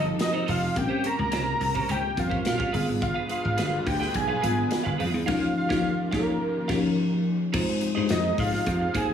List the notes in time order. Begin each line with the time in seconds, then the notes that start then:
Already playing: G1 F3 C4 D#4 G4 A4
0.05 muted clean electric guitar stroke
0.19 D#5, muted clean electric guitar stroke, snare, closed hi-hat
0.33 D#4 A4 C5
0.46 F1 D#4 A4 C5 F5, open hi-hat
0.75 A#1 C#3 G3 A#3 C4 C#4 A#4 G5, muted clean electric guitar stroke, kick, closed hi-hat
0.89 C#4 G4 C5
1.03 C#4 G4 C5 A#5, closed hi-hat
1.19 C#2
1.31 C2 C#4 G4 C5, snare, closed hi-hat
1.46 muted clean electric guitar stroke
1.60 C2, muted clean electric guitar stroke, open hi-hat
1.75 C#4 G4 C5, kick
1.89 C#2 C#4 G4 C5 G5, closed hi-hat
2.03 muted clean electric guitar stroke
2.16 F2 G3 C4 C#4 A#4 F5, muted clean electric guitar stroke, kick, closed hi-hat
2.30 C#4 G4 C5, kick
2.45 A#2 F5, snare, closed hi-hat
2.58 C#4 G4 C#5, kick
2.72 G1 G3 B3 D4 F4 G#4 B4 F5, open hi-hat
2.86 G#1, muted clean electric guitar stroke
3.01 G1 F5, muted clean electric guitar stroke, kick, closed hi-hat
3.14 G#4 B4 F5
3.28 G#4 B4 F5, closed hi-hat
3.45 G#1
3.57 G1 G#4 B4 F5, snare, closed hi-hat
3.71 muted clean electric guitar stroke
3.86 D2 G5, muted clean electric guitar stroke, kick, open hi-hat
4.00 G#4 B4 G5, snare
4.14 B1 G#5, muted clean electric guitar stroke, kick, closed hi-hat
4.28 G#4 B4 F5
4.41 G#1 G3 B3 F4 G#4 B4 F5, closed hi-hat
4.56 muted clean electric guitar stroke
4.70 muted clean electric guitar stroke, snare, closed hi-hat
4.84 G1 G#4 B4 F5
4.98 F2 G#4 B4 F5, open hi-hat
5.13 E2, muted clean electric guitar stroke
5.26 D#2 D#3 F3 A#3 C#4 D#4 F4 G4 C#5 F5, kick, snare, crash
5.57 F5
5.69 D#2 F3 C#4 D#4 G4 C#5 F5, kick, snare
6.11 D#2 F3 C#4 D#4 G4 A#4 C#5 F5, kick, snare
6.68 D#2 F3 C#4 D#4 G4 C#5 F5, kick, snare, crash
7.53 F2 F3 G#3 C4 D#4 F4 G4 G#4 C5, kick, crash
7.67 muted clean electric guitar stroke, snare
7.81 muted clean electric guitar stroke, closed hi-hat
7.95 G2 G#3 C4 D#4 F4 G#4 C5 D#5
8.09 F2 D#5, muted clean electric guitar stroke, snare, closed hi-hat
8.24 muted clean electric guitar stroke
8.38 G#2 F5, kick, open hi-hat
8.52 muted clean electric guitar stroke, snare
8.66 F2 F5, kick, closed hi-hat
8.80 muted clean electric guitar stroke
8.94 D#2 D#4 G#4 C5 G#5, kick, closed hi-hat
9.08 muted clean electric guitar stroke